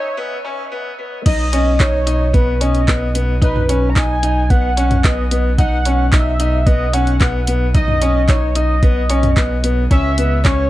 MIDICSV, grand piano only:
0, 0, Header, 1, 2, 480
1, 0, Start_track
1, 0, Key_signature, 5, "major"
1, 0, Tempo, 540541
1, 1119, Time_signature, 4, 2, 24, 8
1, 9501, End_track
2, 0, Start_track
2, 0, Title_t, "Grand piano"
2, 0, Program_c, 0, 0
2, 154, Note_on_c, 0, 59, 94
2, 312, Note_off_c, 0, 59, 0
2, 396, Note_on_c, 0, 61, 80
2, 553, Note_off_c, 0, 61, 0
2, 637, Note_on_c, 0, 59, 87
2, 794, Note_off_c, 0, 59, 0
2, 877, Note_on_c, 0, 59, 74
2, 1034, Note_off_c, 0, 59, 0
2, 1117, Note_on_c, 0, 63, 88
2, 1274, Note_off_c, 0, 63, 0
2, 1356, Note_on_c, 0, 61, 79
2, 1514, Note_off_c, 0, 61, 0
2, 1593, Note_on_c, 0, 63, 86
2, 1751, Note_off_c, 0, 63, 0
2, 1834, Note_on_c, 0, 63, 81
2, 1992, Note_off_c, 0, 63, 0
2, 2072, Note_on_c, 0, 59, 84
2, 2231, Note_off_c, 0, 59, 0
2, 2314, Note_on_c, 0, 61, 78
2, 2472, Note_off_c, 0, 61, 0
2, 2555, Note_on_c, 0, 59, 77
2, 2713, Note_off_c, 0, 59, 0
2, 2796, Note_on_c, 0, 59, 75
2, 2953, Note_off_c, 0, 59, 0
2, 3033, Note_on_c, 0, 63, 88
2, 3191, Note_off_c, 0, 63, 0
2, 3276, Note_on_c, 0, 61, 75
2, 3433, Note_off_c, 0, 61, 0
2, 3517, Note_on_c, 0, 63, 84
2, 3674, Note_off_c, 0, 63, 0
2, 3755, Note_on_c, 0, 63, 77
2, 3913, Note_off_c, 0, 63, 0
2, 3996, Note_on_c, 0, 59, 81
2, 4153, Note_off_c, 0, 59, 0
2, 4236, Note_on_c, 0, 61, 85
2, 4393, Note_off_c, 0, 61, 0
2, 4476, Note_on_c, 0, 59, 81
2, 4634, Note_off_c, 0, 59, 0
2, 4717, Note_on_c, 0, 59, 72
2, 4874, Note_off_c, 0, 59, 0
2, 4960, Note_on_c, 0, 63, 89
2, 5116, Note_off_c, 0, 63, 0
2, 5202, Note_on_c, 0, 61, 75
2, 5357, Note_off_c, 0, 61, 0
2, 5440, Note_on_c, 0, 63, 88
2, 5596, Note_off_c, 0, 63, 0
2, 5680, Note_on_c, 0, 63, 80
2, 5836, Note_off_c, 0, 63, 0
2, 5917, Note_on_c, 0, 59, 90
2, 6074, Note_off_c, 0, 59, 0
2, 6157, Note_on_c, 0, 61, 81
2, 6314, Note_off_c, 0, 61, 0
2, 6398, Note_on_c, 0, 59, 83
2, 6555, Note_off_c, 0, 59, 0
2, 6639, Note_on_c, 0, 59, 76
2, 6795, Note_off_c, 0, 59, 0
2, 6879, Note_on_c, 0, 63, 89
2, 7036, Note_off_c, 0, 63, 0
2, 7119, Note_on_c, 0, 61, 80
2, 7275, Note_off_c, 0, 61, 0
2, 7359, Note_on_c, 0, 63, 86
2, 7515, Note_off_c, 0, 63, 0
2, 7599, Note_on_c, 0, 63, 80
2, 7756, Note_off_c, 0, 63, 0
2, 7837, Note_on_c, 0, 59, 87
2, 7994, Note_off_c, 0, 59, 0
2, 8078, Note_on_c, 0, 61, 82
2, 8235, Note_off_c, 0, 61, 0
2, 8320, Note_on_c, 0, 59, 75
2, 8476, Note_off_c, 0, 59, 0
2, 8558, Note_on_c, 0, 59, 72
2, 8714, Note_off_c, 0, 59, 0
2, 8800, Note_on_c, 0, 61, 89
2, 8956, Note_off_c, 0, 61, 0
2, 9040, Note_on_c, 0, 59, 76
2, 9196, Note_off_c, 0, 59, 0
2, 9279, Note_on_c, 0, 61, 83
2, 9435, Note_off_c, 0, 61, 0
2, 9501, End_track
0, 0, End_of_file